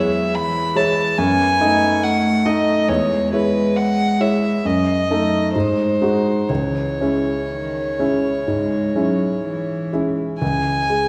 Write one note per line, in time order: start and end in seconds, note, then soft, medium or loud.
0.00 1.20 E2 soft
0.00 0.37 F#3 soft
0.00 0.73 G#3 soft
0.00 0.72 E4 soft
0.00 0.73 C#5 soft
0.00 0.37 E5 medium
0.35 1.20 E3 soft
0.35 0.78 B5 medium
0.76 1.14 G#3 soft
0.76 1.14 E4 soft
0.76 1.14 C#5 soft
0.76 1.20 A5 medium
1.18 1.59 F#2 soft
1.18 2.05 B3 soft
1.18 2.05 G#5 medium
1.61 2.41 A3 soft
1.61 2.41 D#4 soft
1.61 2.41 D#5 soft
2.03 2.90 A3 soft
2.03 2.47 F#5 medium
2.45 2.85 A3 soft
2.45 2.85 D#4 soft
2.45 2.90 D#5 medium
2.45 2.85 D#5 soft
2.88 3.32 E2 soft
2.88 4.64 G#3 soft
2.88 3.33 C#5 medium
3.33 4.16 G#3 soft
3.33 4.16 E4 soft
3.33 3.78 B4 medium
3.33 4.16 C#5 soft
3.76 4.23 F#5 medium
4.20 4.60 G#3 soft
4.20 4.60 E4 soft
4.20 4.61 C#5 soft
4.20 4.67 E5 medium
4.65 5.08 F#2 soft
4.65 5.09 F#3 soft
4.65 5.55 D#5 medium
5.10 5.57 F#3 soft
5.10 5.51 A3 soft
5.10 5.51 D#4 soft
5.10 5.52 A4 soft
5.56 6.00 G#2 soft
5.56 6.49 G#3 soft
5.56 6.51 C5 medium
6.02 6.45 G#3 soft
6.02 6.46 D#4 soft
6.02 6.46 F#4 soft
6.49 6.98 C#2 soft
6.49 7.37 E3 soft
6.49 9.93 C#5 medium
7.01 7.95 G#3 soft
7.01 7.96 C#4 soft
7.01 7.96 E4 soft
7.51 8.02 D#3 soft
7.99 8.51 C#3 soft
7.99 8.44 G#3 soft
7.99 8.44 C#4 soft
7.99 8.44 E4 soft
8.48 8.94 G#2 soft
8.48 8.96 G#3 soft
8.96 9.43 F#3 soft
8.96 9.89 G#3 soft
8.96 9.89 C#4 soft
8.96 9.89 E4 soft
9.46 10.41 E3 soft
9.93 10.37 G#3 soft
9.93 10.38 C#4 soft
9.93 10.38 E4 soft
10.41 11.09 C#2 soft
10.41 11.09 G#5 medium
10.90 11.09 G#3 soft